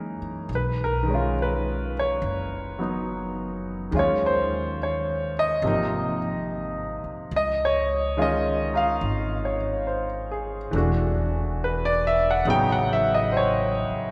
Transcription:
Already playing: F#2 E3 G#3 A#3 C#4 D#4 A#4
0.21 muted upright bass stroke
0.49 B1
0.55 B4
0.84 A#4
1.03 D#3
1.07 G#3 C#4
1.14 F4
1.42 B4
1.99 C#5
2.22 F#1
2.79 F#3 B3 D#4
3.91 D#2 D#3 G#3 C#4
3.96 F4 C#5
4.26 C5
4.83 C#5
5.39 D#5
5.62 G#1 C3 F3 A#3
5.68 D#4
7.04 muted upright bass stroke
7.31 C#2
7.36 D#5
7.65 C#5
8.17 D#3 G#3 C#4 F4
8.22 D#5
8.74 D#4 F4 F5
9.01 G#1
9.45 C#5
9.87 C5
10.31 G#4
10.71 E1 E3 A3 D4
10.76 F#4
11.64 B4
11.85 D5
12.07 E5
12.31 F#5
12.45 A1 C#3 F#3 B3 D#4
12.50 G5
12.72 F#5
12.93 E5
13.14 D#5
13.32 C5
13.37 C#5
13.90 muted upright bass stroke

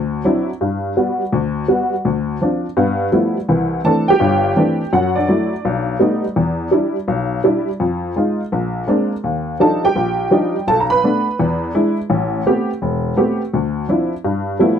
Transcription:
Already playing: D2
0.25 F#3 C4 D4 E4
0.61 G2
0.97 G3 B3 F#4
1.32 D2
1.68 G3 B3 F#4
2.05 D2
2.41 F3 C4 D4
2.77 G2 B3
3.12 F3 G3 A3 B3 E4
3.49 C2 E3
3.84 E3 A3 C4 D4 A4 A5
4.08 G4 G5
4.20 G1 G2
4.56 E3 A3 C4 D4
4.93 F#2 F#4 F#5
5.15 D4 D5
5.28 F#3 A3 E4
5.65 B1
6.00 G3 A3 B3 D#4
6.36 E2
6.71 G3 D4 E4
7.08 B1
7.44 G3 D4 E4
7.80 F2
8.16 G#3 D#4 F4
8.52 A#1
8.87 G#3 A#3 C4 D4
9.24 D#2
9.60 F3 G3 D4 D#4 A4 A5
9.85 G4 G5
9.96 A#1
10.31 F3 G3 D4 D#4
10.67 B1 A4 A5
10.80 A#5
10.90 B4 B5
11.03 A3 B3 D4
11.39 E2
11.74 G#3 D4 E4
12.10 A1
12.46 A3 B3 C4 G4
12.82 E1
13.17 A3 B3 C4 G4
13.53 D2
13.89 F3 C4 D4 E4
14.25 G2
14.59 F3 G3 A3 B3 E4

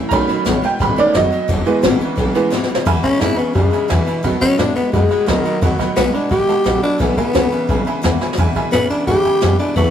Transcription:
Already playing: E3 A3 C#4 E4
0.09 B1 B2 D#3 F#3 A3 B3 C#4 A#5, kick, ride
0.13 F#4 B5
0.28 B2 F#3 A3 B3 F#4, muted upright bass stroke, snare, ride
0.45 A1 B2 D#3 G#3 A3 B3 F#4, snare, ride
0.62 B2 G#3 A3 B3 F#4 G5, muted upright bass stroke, snare, ride
0.79 G#1 B2 D#3 G#3 A3 B3 F#4 B5, kick, snare, ride
0.96 B2 D#3 G#3 A3 B3 C#4 F#4 D5, muted upright bass stroke, snare, ride
1.14 F#1 B2 D#3 F#3 A3 B3 F#4 D#5, snare, ride
1.30 B2 F#3 A3 B3 F#4, muted upright bass stroke, ride
1.48 E1 E2 B2 E3 G#3 B3 E4, kick, ride
1.65 E2 B2 E3 G#3 B3 E4, ride
1.82 G#1 E2 B2 C#3 E3 G#3 B3 E4, snare, ride
1.99 E2 C#3 E3 G#3 B3 E4, muted upright bass stroke, ride
2.16 B1 E2 C#3 E3 G#3 B3 E4, kick, snare, ride
2.33 E2 C#3 E3 G#3 B3 E4, muted upright bass stroke, snare, ride
2.50 G#1 E2 B2 E3 G#3 B3 E4, snare
2.63 snare
2.68 E2 B2 E3 G#3 B3 E4, muted upright bass stroke
2.75 snare
2.85 E2 B2 E3 G#3 B3 E4 E5 G#5 B5, kick, crash
3.02 E2 B2 E3 G#3 B3 C#4 E4 E5 G#5 B5, muted upright bass stroke, kick, ride
3.20 E2 G#2 B2 C#3 E3 G#3 B3 E4 E5 G#5 B5, snare, ride
3.36 E2 C#3 E3 G#3 B3 E4 E5 G#5 C#6, muted upright bass stroke, ride
3.53 E2 F#2 C#3 E3 G#3 B3 E4 E5 G#5 B5, kick, ride
3.70 E2 C#3 E3 G#3 B3 E4 E5 G#5 B5, snare, ride
3.88 E2 B2 E3 G#3 B3 E4 E5 G#5 B5, snare, ride
4.05 E2 B2 E3 G#3 B3 E4 E5 G#5 B5, muted upright bass stroke, ride
4.23 B2 D#3 F#3 A3 B3 F#4 D#5 F#5 B5, kick, ride
4.41 B2 F#3 A3 B3 C#4 F#4 D#5 F#5 B5, muted upright bass stroke, kick, ride
4.57 A2 B2 D#3 G#3 A3 B3 D4 F#4 D#5 F#5 B5, snare, ride
4.75 B2 G#3 A3 B3 F#4 D#5 F#5 B5, muted upright bass stroke, ride
4.92 F#2 B2 D#3 G#3 A3 B3 F#4 D#5 F#5 B5, kick, snare, ride
5.09 B2 G#3 A3 B3 F#4 D#5 F#5 B5, muted upright bass stroke, ride
5.26 C#2 B2 D#3 F#3 A3 B3 F#4 D#5 F#5 B5, snare, ride
5.44 B2 F#3 A3 B3 F#4 D#5 F#5 B5, muted upright bass stroke, ride
5.61 D#2 B2 D#3 F#3 A3 B3 F#4 D#5 F#5 B5, kick, snare, ride
5.79 B2 F#3 A3 B3 F#4 D#5 F#5 B5, kick, snare, ride
5.96 B1 B2 D#3 G#3 A3 B3 F#4 D#5 F#5 B5, snare, ride
6.13 B2 G#3 A3 B3 D4 F#4 D#5 F#5 B5, muted upright bass stroke, ride
6.29 A1 B2 D#3 G#3 A3 B3 F#4 G4 D#5 F#5 B5, kick, ride
6.47 B2 G#3 A3 B3 F#4 D#5 F#5 A5, muted upright bass stroke, snare, ride
6.64 A#1 B2 D#3 F#3 A3 B3 F#4 D#5 F#5 B5, snare, ride
6.81 B2 F#3 A3 B3 D4 F#4 D#5 F#5 B5, muted upright bass stroke, ride
6.98 B1 E2 B2 E3 G#3 B3 E4 E5 G#5 B5, kick, snare, ride
7.15 E2 B2 E3 G#3 B3 E4 E5 G#5 B5, muted upright bass stroke, kick, ride
7.33 C#2 E2 B2 C#3 E3 G#3 B3 E4 E5 G#5 B5, snare, ride
7.50 E2 C#3 E3 G#3 B3 E4 E5 G#5 B5, muted upright bass stroke, ride
7.68 B1 E2 C#3 E3 G#3 B3 E4 E5 G#5 B5, kick, ride
7.85 E2 C#3 E3 G#3 B3 E4 E5 G#5 B5, muted upright bass stroke, ride
8.02 D#2 E2 B2 E3 G#3 B3 E4 E5 G#5 B5, snare, ride
8.18 E2 B2 E3 G#3 B3 E4 E5 G#5 B5, muted upright bass stroke, snare
8.33 E2 B2, snare
8.37 E2 B2 E3 G#3 B3 E4 E5 G#5 B5, kick, snare, ride
8.53 E2 B2 E3 G#3 B3 E4 E5 G#5 B5, muted upright bass stroke, kick, ride
8.71 E2 A2 B2 C#3 E3 G#3 B3 E4 E5 G#5 B5, snare, ride
8.88 E2 C#3 E3 G#3 B3 D4 E4 E5 G#5 B5, muted upright bass stroke, ride
9.06 E2 G#2 C#3 E3 G#3 B3 E4 G4 E5 G#5 B5, kick, ride
9.23 E2 C#3 E3 G#3 B3 E4 E5 G#5 B5, muted upright bass stroke, ride
9.41 E2 F#2 B2 E3 G#3 B3 E4 E5 G#5 B5, snare, ride
9.58 E2 B2 E3 G#3 B3 D4 E4 E5 G#5 B5, ride
9.76 E2 A2 E3 A3 B3 C#4 E4 E5 A5 C#6, kick, snare, ride

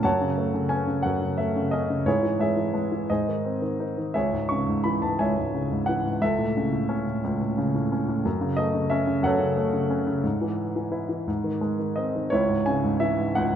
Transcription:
0.03 F#2 C#5 F#5 A5
0.21 C#3
0.38 A3
0.54 C#3
0.69 C#4 G#5
0.87 C#3
1.03 F#2 F#5
1.22 C#3
1.38 A3 E5
1.56 C#3
1.71 C#4 D#5
1.90 C#3
2.06 G#2 E4 G#4 C#5
2.23 E3
2.39 G#3 G#4 C#5 E5
2.56 E3
2.74 G#3
2.92 E3
3.10 G#2 G#4 C5 D#5
3.28 D#3
3.45 C4
3.62 D#3
3.80 D#4
3.98 D#3
4.14 C#2 G#4 C#5 E5
4.33 G#2
4.49 C#3 C#6
4.68 G#2
4.84 E3 B5
5.02 G#2 A5
5.19 C#2 C#5 E5 G#5
5.38 G#2
5.54 C#3
5.72 G#2
5.86 E3 F#5
6.05 G#2
6.21 C#2 A4 E5
6.38 A2
6.57 C#3
6.72 A2
6.89 C#4
7.07 A2
7.24 C#2
7.41 A2
7.58 C#3
7.75 A2
7.92 C#4
8.08 A2
8.25 F#2
8.41 C#3
8.57 A3 D#5
8.74 C#3
8.90 C#4 E5
9.07 C#3
9.23 F#2 A4 C#5 F#5
9.39 C#3
9.57 A3
9.73 C#3
9.90 C#4
10.07 C#3
10.23 G#2
10.41 E3
10.76 E3
10.92 E4
11.09 E3
11.28 G#2
11.44 D#3
11.61 G#3
11.79 D#3
11.96 C4 D#5
12.15 D#3
12.30 C#2 E4 C#5
12.49 G#2
12.66 C#3 G#5
12.84 G#2
13.00 E3 E5
13.19 G#2
13.35 C#2 F#5

